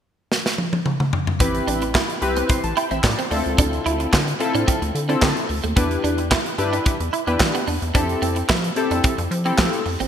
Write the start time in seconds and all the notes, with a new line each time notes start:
0.32 snare
0.46 snare
0.58 high tom
0.73 high tom
0.86 mid tom
1.00 mid tom
1.13 floor tom
1.27 floor tom
1.40 A1 C4 E4 G4 B4, kick, closed hi-hat
1.55 closed hi-hat
1.67 A1 D4, closed hi-hat
1.82 muted clean electric guitar stroke, closed hi-hat
1.95 E4, kick, snare, clap
2.10 closed hi-hat
2.22 C2 C4 E4 G4 B4, muted clean electric guitar stroke, closed hi-hat
2.36 C4, closed hi-hat
2.49 C6, muted clean electric guitar stroke, kick, closed hi-hat
2.64 A1 A5, closed hi-hat
2.77 E4 G5, closed hi-hat
2.91 A1 C4 E5, closed hi-hat
3.04 A2 D5, muted clean electric guitar stroke, kick, snare, clap
3.18 C4 C5, closed hi-hat
3.30 D2 C4 D4 E4 F4 A4, open hi-hat
3.46 C#2, closed hi-hat
3.58 D2 D4, kick, closed hi-hat
3.73 closed hi-hat
3.86 D2 E4, closed hi-hat
4.00 muted clean electric guitar stroke, closed hi-hat
4.13 D3 F4, kick, snare, clap
4.28 closed hi-hat
4.40 C4 E4 F4 A4, muted clean electric guitar stroke, closed hi-hat
4.55 A2 D4, closed hi-hat
4.68 C4, kick, closed hi-hat
4.82 D2, muted clean electric guitar stroke, closed hi-hat
4.95 D3, closed hi-hat
5.09 C4 D4 E4 F4 A4, closed hi-hat
5.22 D3 C4, kick, snare, clap
5.37 closed hi-hat
5.49 D2, muted clean electric guitar stroke, open hi-hat
5.64 D#2 A3, closed hi-hat
5.76 E2 B3 D4 E4 G4 B4, kick, closed hi-hat
5.91 closed hi-hat
6.04 E2 D4, closed hi-hat
6.18 muted clean electric guitar stroke, closed hi-hat
6.31 E4, kick, snare, clap
6.46 closed hi-hat
6.58 G2 D4 E4 G4 B4, muted clean electric guitar stroke, closed hi-hat
6.73 D4, closed hi-hat
6.86 muted clean electric guitar stroke, kick, closed hi-hat
7.00 E2, closed hi-hat
7.13 E4, closed hi-hat
7.27 E2 B3 D4 E4 G4 B4, closed hi-hat
7.40 E3, muted clean electric guitar stroke, kick, snare, clap
7.55 B3, closed hi-hat
7.67 E2 D4, open hi-hat
7.82 E2, closed hi-hat
7.94 F2 C4 D4 E4 G4 A4, kick, closed hi-hat
8.09 closed hi-hat
8.22 F2 C4, closed hi-hat
8.36 muted clean electric guitar stroke, closed hi-hat
8.49 F3 E4, kick, snare, clap
8.64 closed hi-hat
8.76 C4 E4 G4 A4, muted clean electric guitar stroke, closed hi-hat
8.91 F2 D4, closed hi-hat
9.04 C4, kick, closed hi-hat
9.18 F2, muted clean electric guitar stroke, closed hi-hat
9.31 F3, closed hi-hat
9.45 C4 E4 G4 A4, closed hi-hat
9.58 F3 A3, kick, snare, clap
9.73 closed hi-hat
9.86 F2, muted clean electric guitar stroke, open hi-hat
10.00 G#1 C4, closed hi-hat